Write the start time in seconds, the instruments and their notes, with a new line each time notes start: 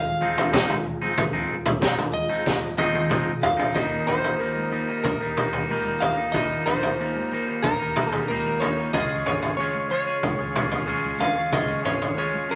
Already playing: picked electric bass D#1, tonewheel organ F3 G#3 F4 G#4, electric slide guitar F5
0.21 clean electric guitar F3 G#3 C4 D#4, low conga
0.37 clean electric guitar F3 G#3 C4 D#4, floor tom
0.52 clean electric guitar F3 G#3 C4 D#4, kick, snare, mid tom
0.70 floor tom, high conga
0.86 muted clean electric guitar stroke, low conga
1.01 clean electric guitar F3 G#3 C4 D#4, high conga
1.18 picked electric bass D#1, kick, floor tom
1.33 clean electric guitar F3 G#3 C4 D#4
1.51 picked electric bass D#1
1.66 floor tom, mid tom, high conga
1.81 clean electric guitar F3 G#3 C4 D#4, kick, snare
1.98 muted clean electric guitar stroke, floor tom, high conga
2.14 electric slide guitar D#5, low conga
2.29 clean electric guitar F3 G#3 C4 D#4
2.46 picked electric bass D#1, kick, snare, low conga
2.77 clean electric guitar F3 G#3 C4 D#4, electric slide guitar D#5, high tom
2.93 clean electric guitar F3 G#3 C4 D#4, high tom
3.09 clean electric guitar F3 G#3 C4 D#4, kick, mid tom, high conga
3.28 high conga
3.42 picked electric bass F1, electric slide guitar F5, muted clean electric guitar stroke, floor tom, low conga
3.57 picked electric bass D#1, clean electric guitar F3 G#3 C4 D#4, floor tom, low conga
3.74 picked electric bass D#1, clean electric guitar D#2 A#2 D#3 G3 A#3 D#4, tonewheel organ G4 A#4 D#5 A#5, electric slide guitar D#5, kick, floor tom
4.06 picked electric bass A#1, clean electric guitar D#3 G3 A#3 D#4, electric slide guitar C5, floor tom
4.24 floor tom
4.39 clean electric guitar D#2 A#2 D#3 G3 A#3 D#4
4.56 high conga
4.71 clean electric guitar D#3 G3 A#3 D#4, low conga
4.88 clean electric guitar D#3 G3 A#3 D#4
5.04 picked electric bass D#1, electric slide guitar A#4, kick, floor tom, high conga
5.21 clean electric guitar D#3 G3 A#3 D#4
5.37 clean electric guitar D#3 G3 A#3 D#4, floor tom, mid tom
5.53 clean electric guitar D#3 G3 A#3 D#4, floor tom
5.69 clean electric guitar D#2 A#2 D#3 G3 A#3 D#4, high conga
5.85 high conga
6.00 clean electric guitar D#3 G3 A#3 D#4, electric slide guitar F5, floor tom, low conga
6.17 clean electric guitar D#3 G3 A#3 D#4
6.32 picked electric bass D#1, clean electric guitar D#2 A#2 D#3 G3 A#3, electric slide guitar D#5, tonewheel organ F5, kick, floor tom
6.37 clean electric guitar D#4
6.66 picked electric bass A#1, clean electric guitar D#3 G3 A#3 D#4, electric slide guitar C5, floor tom
6.83 floor tom
6.99 clean electric guitar D#2 A#2 D#3 G3 A#3 D#4
7.16 high conga
7.31 clean electric guitar D#3 G3 A#3 D#4, low conga
7.47 clean electric guitar D#3 G3 A#3 D#4
7.62 picked electric bass D#1, electric slide guitar A#4, kick, floor tom, high conga
7.80 clean electric guitar D#3 G3 A#3 D#4
7.95 clean electric guitar D#3 G3 A#3 D#4, floor tom, mid tom
8.12 clean electric guitar D#3 G3 A#3 D#4, electric slide guitar G#4, floor tom
8.28 clean electric guitar D#2 A#2 D#3 G3 A#3 D#4, electric slide guitar A#4, high conga
8.45 high conga
8.60 clean electric guitar D#3 G3 A#3 D#4, electric slide guitar C#5, floor tom, low conga
8.77 clean electric guitar D#3 G3 A#3 D#4
8.93 picked electric bass C#2, clean electric guitar C#3 G#3 C#4 F4 G#4, tonewheel organ G#4 C#5 C#6, electric slide guitar D#5, kick, floor tom
9.26 picked electric bass G#1, clean electric guitar G#3 C#4 F4 G#4, electric slide guitar C#5, floor tom
9.42 floor tom
9.57 clean electric guitar C#3 G#3 C#4 F4 G#4, electric slide guitar C#5
9.74 high conga
9.90 clean electric guitar G#3 C#4 F4 G#4, electric slide guitar C#5, low conga
10.07 clean electric guitar C#4 F4 G#4
10.23 picked electric bass C#2, kick, floor tom, high conga
10.39 clean electric guitar C#4 F4 G#4
10.55 clean electric guitar G#3 C#4 F4 G#4, floor tom, mid tom
10.71 clean electric guitar C#4 F4 G#4, floor tom
10.86 clean electric guitar C#3 G#3 C#4 F4 G#4, high conga
11.05 high conga
11.19 clean electric guitar G#3 C#4 F4 G#4, electric slide guitar F5, floor tom, low conga
11.35 clean electric guitar C#4 F4 G#4
11.52 picked electric bass C#2, clean electric guitar C#3 G#3 C#4 F4 G#4, electric slide guitar D#5, kick, floor tom
11.70 high conga
11.84 picked electric bass G#1, clean electric guitar G#3 C#4 F4 G#4, electric slide guitar C#5, floor tom
12.02 floor tom
12.16 clean electric guitar C#3 G#3 C#4 F4 G#4, electric slide guitar C#5
12.34 high conga
12.49 clean electric guitar G#3 C#4 F4 G#4, electric slide guitar A#4, low conga